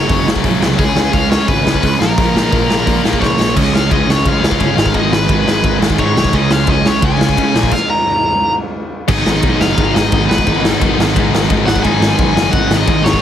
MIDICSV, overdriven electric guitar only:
0, 0, Header, 1, 2, 480
1, 0, Start_track
1, 0, Tempo, 345224
1, 1101, Time_signature, 4, 2, 24, 8
1, 18380, End_track
2, 0, Start_track
2, 0, Title_t, "Overdriven electric guitar"
2, 0, Program_c, 0, 29
2, 0, Note_on_c, 0, 73, 72
2, 379, Note_off_c, 0, 73, 0
2, 1098, Note_on_c, 0, 68, 96
2, 1580, Note_on_c, 0, 77, 98
2, 1596, Note_off_c, 0, 68, 0
2, 1811, Note_off_c, 0, 77, 0
2, 1816, Note_on_c, 0, 73, 90
2, 2056, Note_on_c, 0, 71, 88
2, 2068, Note_off_c, 0, 73, 0
2, 2508, Note_off_c, 0, 71, 0
2, 2527, Note_on_c, 0, 71, 90
2, 2773, Note_off_c, 0, 71, 0
2, 2778, Note_on_c, 0, 70, 93
2, 4414, Note_off_c, 0, 70, 0
2, 4461, Note_on_c, 0, 73, 80
2, 4915, Note_off_c, 0, 73, 0
2, 4965, Note_on_c, 0, 75, 94
2, 5185, Note_off_c, 0, 75, 0
2, 5217, Note_on_c, 0, 77, 83
2, 5453, Note_off_c, 0, 77, 0
2, 5459, Note_on_c, 0, 75, 81
2, 5673, Note_off_c, 0, 75, 0
2, 5703, Note_on_c, 0, 73, 74
2, 5938, Note_off_c, 0, 73, 0
2, 5942, Note_on_c, 0, 77, 85
2, 6872, Note_off_c, 0, 77, 0
2, 6878, Note_on_c, 0, 75, 103
2, 7123, Note_on_c, 0, 71, 83
2, 7128, Note_off_c, 0, 75, 0
2, 8029, Note_off_c, 0, 71, 0
2, 8330, Note_on_c, 0, 73, 87
2, 8822, Note_off_c, 0, 73, 0
2, 8825, Note_on_c, 0, 75, 98
2, 9059, Note_off_c, 0, 75, 0
2, 9059, Note_on_c, 0, 77, 94
2, 9299, Note_off_c, 0, 77, 0
2, 9310, Note_on_c, 0, 75, 98
2, 9541, Note_on_c, 0, 73, 83
2, 9544, Note_off_c, 0, 75, 0
2, 9780, Note_off_c, 0, 73, 0
2, 9789, Note_on_c, 0, 80, 106
2, 10740, Note_off_c, 0, 80, 0
2, 10746, Note_on_c, 0, 77, 112
2, 10982, Note_off_c, 0, 77, 0
2, 10988, Note_on_c, 0, 82, 98
2, 11879, Note_off_c, 0, 82, 0
2, 12636, Note_on_c, 0, 75, 107
2, 13356, Note_off_c, 0, 75, 0
2, 13361, Note_on_c, 0, 77, 112
2, 13821, Note_off_c, 0, 77, 0
2, 13827, Note_on_c, 0, 75, 108
2, 14276, Note_off_c, 0, 75, 0
2, 14304, Note_on_c, 0, 71, 84
2, 14754, Note_off_c, 0, 71, 0
2, 16220, Note_on_c, 0, 78, 105
2, 16446, Note_off_c, 0, 78, 0
2, 16452, Note_on_c, 0, 80, 124
2, 16890, Note_off_c, 0, 80, 0
2, 16907, Note_on_c, 0, 80, 105
2, 17397, Note_off_c, 0, 80, 0
2, 17403, Note_on_c, 0, 78, 106
2, 17750, Note_off_c, 0, 78, 0
2, 17756, Note_on_c, 0, 75, 93
2, 18128, Note_on_c, 0, 73, 91
2, 18137, Note_off_c, 0, 75, 0
2, 18379, Note_off_c, 0, 73, 0
2, 18380, End_track
0, 0, End_of_file